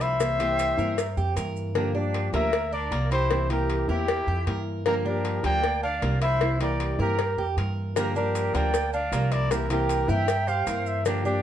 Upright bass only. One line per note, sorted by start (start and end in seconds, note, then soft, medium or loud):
0.00 0.72 C2 medium
0.78 1.14 G2 medium
1.17 1.35 F2 medium
1.36 2.27 G2 loud
2.33 2.87 D2 loud
2.91 3.83 C2 medium
3.89 4.25 E2 medium
4.27 4.45 F2 medium
4.47 5.38 G2 medium
5.44 5.98 D2 medium
6.02 6.93 C2 loud
6.99 7.35 G2 medium
7.37 7.56 F2 medium
7.57 8.48 G2 medium
8.54 9.08 D2 medium
9.12 10.03 C2 loud
10.08 10.63 G2 loud
10.67 11.42 G2 medium